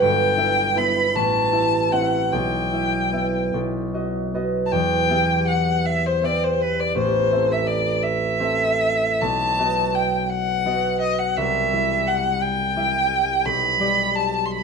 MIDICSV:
0, 0, Header, 1, 3, 480
1, 0, Start_track
1, 0, Key_signature, 1, "minor"
1, 0, Tempo, 755668
1, 17, Time_signature, 6, 3, 24, 8
1, 978, Tempo, 795756
1, 2898, Tempo, 738007
1, 5298, Tempo, 801068
1, 5778, Tempo, 718563
1, 7218, Tempo, 696056
1, 9468, End_track
2, 0, Start_track
2, 0, Title_t, "Violin"
2, 0, Program_c, 0, 40
2, 15, Note_on_c, 0, 79, 91
2, 493, Note_on_c, 0, 83, 83
2, 503, Note_off_c, 0, 79, 0
2, 736, Note_on_c, 0, 81, 86
2, 745, Note_off_c, 0, 83, 0
2, 1209, Note_on_c, 0, 78, 77
2, 1218, Note_off_c, 0, 81, 0
2, 1448, Note_on_c, 0, 79, 72
2, 1457, Note_off_c, 0, 78, 0
2, 2177, Note_off_c, 0, 79, 0
2, 2859, Note_on_c, 0, 81, 64
2, 2895, Note_on_c, 0, 79, 91
2, 2905, Note_off_c, 0, 81, 0
2, 3383, Note_off_c, 0, 79, 0
2, 3387, Note_on_c, 0, 78, 79
2, 3634, Note_on_c, 0, 76, 82
2, 3644, Note_off_c, 0, 78, 0
2, 3768, Note_on_c, 0, 72, 72
2, 3778, Note_off_c, 0, 76, 0
2, 3888, Note_on_c, 0, 74, 76
2, 3898, Note_off_c, 0, 72, 0
2, 4013, Note_on_c, 0, 72, 67
2, 4022, Note_off_c, 0, 74, 0
2, 4131, Note_on_c, 0, 71, 75
2, 4140, Note_off_c, 0, 72, 0
2, 4250, Note_on_c, 0, 74, 71
2, 4260, Note_off_c, 0, 71, 0
2, 4355, Note_off_c, 0, 74, 0
2, 4362, Note_on_c, 0, 72, 77
2, 4717, Note_on_c, 0, 76, 68
2, 4726, Note_off_c, 0, 72, 0
2, 4814, Note_on_c, 0, 74, 72
2, 4823, Note_off_c, 0, 76, 0
2, 5047, Note_on_c, 0, 76, 85
2, 5056, Note_off_c, 0, 74, 0
2, 5777, Note_on_c, 0, 81, 92
2, 5787, Note_off_c, 0, 76, 0
2, 6272, Note_on_c, 0, 79, 73
2, 6282, Note_off_c, 0, 81, 0
2, 6497, Note_on_c, 0, 78, 77
2, 6507, Note_off_c, 0, 79, 0
2, 6971, Note_off_c, 0, 78, 0
2, 6975, Note_on_c, 0, 75, 77
2, 7097, Note_on_c, 0, 78, 74
2, 7107, Note_off_c, 0, 75, 0
2, 7220, Note_on_c, 0, 76, 81
2, 7231, Note_off_c, 0, 78, 0
2, 7702, Note_on_c, 0, 78, 71
2, 7712, Note_off_c, 0, 76, 0
2, 7942, Note_on_c, 0, 79, 83
2, 7953, Note_off_c, 0, 78, 0
2, 8654, Note_on_c, 0, 83, 88
2, 8664, Note_off_c, 0, 79, 0
2, 9139, Note_on_c, 0, 81, 75
2, 9149, Note_off_c, 0, 83, 0
2, 9346, Note_on_c, 0, 84, 61
2, 9356, Note_off_c, 0, 81, 0
2, 9382, Note_on_c, 0, 83, 83
2, 9393, Note_off_c, 0, 84, 0
2, 9468, Note_off_c, 0, 83, 0
2, 9468, End_track
3, 0, Start_track
3, 0, Title_t, "Harp"
3, 0, Program_c, 1, 46
3, 0, Note_on_c, 1, 59, 55
3, 0, Note_on_c, 1, 71, 61
3, 12, Note_on_c, 1, 31, 64
3, 237, Note_on_c, 1, 64, 49
3, 240, Note_on_c, 1, 76, 50
3, 476, Note_off_c, 1, 59, 0
3, 479, Note_off_c, 1, 64, 0
3, 481, Note_off_c, 1, 76, 0
3, 483, Note_on_c, 1, 59, 49
3, 485, Note_on_c, 1, 64, 48
3, 491, Note_on_c, 1, 76, 53
3, 731, Note_on_c, 1, 33, 63
3, 749, Note_off_c, 1, 59, 0
3, 750, Note_off_c, 1, 31, 0
3, 752, Note_off_c, 1, 71, 0
3, 964, Note_off_c, 1, 64, 0
3, 965, Note_off_c, 1, 76, 0
3, 970, Note_on_c, 1, 64, 49
3, 975, Note_on_c, 1, 76, 52
3, 1205, Note_off_c, 1, 64, 0
3, 1207, Note_off_c, 1, 76, 0
3, 1209, Note_on_c, 1, 60, 48
3, 1214, Note_on_c, 1, 64, 46
3, 1214, Note_on_c, 1, 76, 51
3, 1453, Note_on_c, 1, 35, 63
3, 1474, Note_off_c, 1, 60, 0
3, 1475, Note_off_c, 1, 33, 0
3, 1690, Note_off_c, 1, 64, 0
3, 1690, Note_off_c, 1, 76, 0
3, 1695, Note_on_c, 1, 64, 45
3, 1699, Note_on_c, 1, 76, 52
3, 1930, Note_off_c, 1, 64, 0
3, 1933, Note_off_c, 1, 76, 0
3, 1933, Note_on_c, 1, 59, 43
3, 1939, Note_on_c, 1, 64, 44
3, 1941, Note_on_c, 1, 76, 47
3, 2177, Note_off_c, 1, 35, 0
3, 2184, Note_on_c, 1, 35, 58
3, 2199, Note_off_c, 1, 64, 0
3, 2200, Note_off_c, 1, 76, 0
3, 2426, Note_on_c, 1, 66, 44
3, 2428, Note_on_c, 1, 75, 48
3, 2663, Note_off_c, 1, 59, 0
3, 2665, Note_off_c, 1, 66, 0
3, 2665, Note_off_c, 1, 75, 0
3, 2668, Note_on_c, 1, 59, 45
3, 2672, Note_on_c, 1, 75, 49
3, 2674, Note_on_c, 1, 66, 47
3, 2900, Note_on_c, 1, 40, 62
3, 2918, Note_off_c, 1, 35, 0
3, 2921, Note_off_c, 1, 66, 0
3, 2921, Note_off_c, 1, 75, 0
3, 3133, Note_off_c, 1, 59, 0
3, 3139, Note_on_c, 1, 59, 44
3, 3146, Note_on_c, 1, 67, 46
3, 3148, Note_on_c, 1, 76, 50
3, 3867, Note_off_c, 1, 59, 0
3, 3871, Note_off_c, 1, 67, 0
3, 3874, Note_off_c, 1, 76, 0
3, 3875, Note_on_c, 1, 59, 45
3, 3879, Note_on_c, 1, 67, 45
3, 3882, Note_on_c, 1, 76, 49
3, 4348, Note_on_c, 1, 33, 61
3, 4362, Note_off_c, 1, 40, 0
3, 4363, Note_off_c, 1, 59, 0
3, 4365, Note_off_c, 1, 67, 0
3, 4583, Note_off_c, 1, 76, 0
3, 4586, Note_on_c, 1, 60, 45
3, 4589, Note_on_c, 1, 69, 43
3, 4591, Note_on_c, 1, 76, 49
3, 5283, Note_off_c, 1, 60, 0
3, 5284, Note_off_c, 1, 69, 0
3, 5289, Note_off_c, 1, 76, 0
3, 5290, Note_on_c, 1, 60, 46
3, 5293, Note_on_c, 1, 69, 44
3, 5297, Note_on_c, 1, 76, 50
3, 5778, Note_on_c, 1, 35, 62
3, 5794, Note_off_c, 1, 60, 0
3, 5794, Note_off_c, 1, 69, 0
3, 5797, Note_off_c, 1, 76, 0
3, 5799, Note_off_c, 1, 33, 0
3, 6027, Note_on_c, 1, 59, 41
3, 6030, Note_on_c, 1, 66, 41
3, 6033, Note_on_c, 1, 75, 45
3, 6735, Note_off_c, 1, 59, 0
3, 6737, Note_off_c, 1, 66, 0
3, 6738, Note_off_c, 1, 75, 0
3, 6742, Note_on_c, 1, 59, 44
3, 6746, Note_on_c, 1, 66, 43
3, 6746, Note_on_c, 1, 75, 47
3, 7223, Note_on_c, 1, 36, 59
3, 7236, Note_off_c, 1, 35, 0
3, 7237, Note_off_c, 1, 59, 0
3, 7238, Note_off_c, 1, 66, 0
3, 7239, Note_off_c, 1, 75, 0
3, 7465, Note_on_c, 1, 55, 44
3, 7470, Note_on_c, 1, 64, 42
3, 7473, Note_on_c, 1, 76, 47
3, 8173, Note_off_c, 1, 55, 0
3, 8174, Note_off_c, 1, 76, 0
3, 8175, Note_off_c, 1, 64, 0
3, 8179, Note_on_c, 1, 55, 44
3, 8184, Note_on_c, 1, 64, 45
3, 8185, Note_on_c, 1, 76, 46
3, 8655, Note_on_c, 1, 35, 59
3, 8678, Note_off_c, 1, 64, 0
3, 8678, Note_off_c, 1, 76, 0
3, 8680, Note_off_c, 1, 36, 0
3, 8886, Note_off_c, 1, 55, 0
3, 8892, Note_on_c, 1, 55, 42
3, 8897, Note_on_c, 1, 74, 48
3, 8898, Note_on_c, 1, 67, 43
3, 9468, Note_off_c, 1, 35, 0
3, 9468, Note_off_c, 1, 55, 0
3, 9468, Note_off_c, 1, 67, 0
3, 9468, Note_off_c, 1, 74, 0
3, 9468, End_track
0, 0, End_of_file